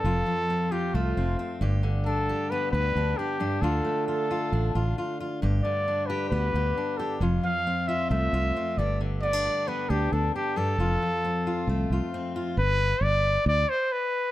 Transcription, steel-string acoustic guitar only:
\new Staff \with { instrumentName = "Steel-string acoustic guitar" } { \time 4/4 \key g \mixolydian \tempo 4 = 134 << { f'4 c'8 f'8 a8 c'8 c'8 g'8~ | g'8 d'8 g'8 b8 g'8 d'8 d'8 d'8 | f'4 f'8 f'8 d'8 f'8 f'8 f'8 | g'4 d'8 g'8 b8 g'8 d'8 g'8 |
f'4 c'8 f'8 a8 f'8 c'8 g'8~ | g'8 b16 d'16 g'8 b8 d'8 d'8 d'8 g'8 | f'4 c'8 f'8 a8 f'8 c'8 f'8 | r1 | } \\ { f,8 f2. g,8 | d2.~ d8 g,8 | d8 a2.~ a8 | g,8 d2.~ d8 |
f,8 f2. g,8 | d2.~ d8 g,8 | f,8 f2.~ f8 | r1 | } >> }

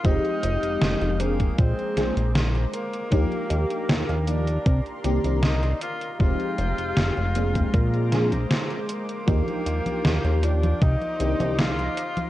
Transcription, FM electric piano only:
\new Staff \with { instrumentName = "FM electric piano" } { \time 4/4 \key ees \major \tempo 4 = 78 <f aes c' ees' g'>4. <f bes c' d' aes'>4 <f bes c' d' aes'>16 r4 r16 | <f bes d' ees' g'>4. <f bes d' ees' g'>16 r8. <ees bes c' d' g'>16 <ees bes c' d' g'>16 r4 | <f aes c' ees' g'>4. <f bes c' d' aes'>4 <f bes c' d' aes'>16 r4 r16 | <f bes d' ees' g'>4. <f bes d' ees' g'>16 r8. <ees bes c' d' g'>16 <ees bes c' d' g'>16 r4 | }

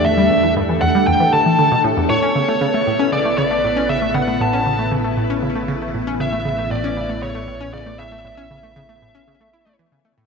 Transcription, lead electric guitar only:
\new Staff \with { instrumentName = "Lead electric guitar" } { \time 4/4 \key a \mixolydian \tempo 4 = 117 e''4 r8 fis''8 g''8 a''4 r8 | cis''2 d''8 d''4 e''8 | fis''8 a''4 r2 r8 | e''4 d''4 cis''4 d''8 e''8~ |
e''2. r4 | }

